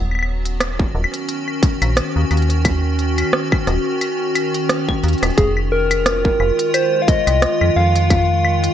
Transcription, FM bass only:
0.00 0.85 D#1 loud
0.95 1.06 D#1 loud
1.82 2.01 A#1 medium
2.16 2.25 D#2 medium
2.31 3.24 D#2 medium
3.67 3.79 D#1 loud
5.04 5.15 D#2 medium
5.23 5.32 D#1 loud
5.38 6.30 F1 loud
6.40 6.51 F1 loud
7.27 7.46 C2 loud
7.61 7.70 F2 medium
7.76 8.69 F2 medium

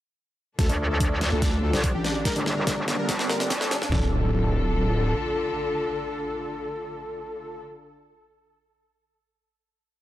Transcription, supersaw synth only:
0.59 0.67 A4 medium
0.69 0.77 D4 medium
0.80 0.88 D4 medium
0.90 0.98 A4 medium
1.01 1.09 D4 medium
1.11 1.19 D4 medium
1.21 1.30 D4 medium
1.32 1.40 A4 medium
1.42 1.51 D4 medium
1.53 1.61 D4 medium
1.63 1.71 A4 medium
1.73 1.82 D4 medium
1.84 1.92 D4 medium
1.94 2.02 G4 medium
2.04 2.13 D4 medium
2.15 2.23 D4 medium
2.25 2.34 A#4 loud
2.36 2.44 D4 medium
2.46 2.54 D4 medium
2.57 2.65 A#4 medium
2.67 2.75 D4 medium
2.78 2.86 D4 medium
2.88 2.96 D4 medium
2.99 3.07 A#4 medium
3.09 3.17 D4 medium
3.19 3.27 D4 medium
3.30 3.38 A#4 medium
3.40 3.48 D4 medium
3.50 3.59 D4 medium
3.61 3.69 A4 medium
3.71 3.80 D4 medium
3.82 3.90 D4 medium
3.92 7.61 A4 loud

